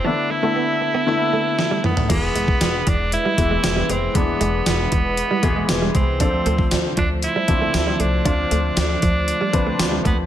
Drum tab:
CC |----------------|x---------------|----------------|----------------|
HH |----------------|x-x-x-x-x-x-x-x-|x-x-x-x-x-x-x-x-|x-x-x-x-x-x-x-x-|
TB |----------------|----x-------x---|----x-------x---|----x-------x---|
SD |------------o---|----o-------o---|----o-------o---|----o-------o---|
T2 |--------------o-|----------------|----------------|----------------|
FT |---------------o|----------------|----------------|----------------|
BD |----------------|o--o--o---o-----|o-----o---o---o-|o--o--o---o-----|

CC |----------------|
HH |x-x-x-x-x-x-x-x-|
TB |----x-------x---|
SD |----o-------o---|
T2 |----------------|
FT |----------------|
BD |o-----o---o---o-|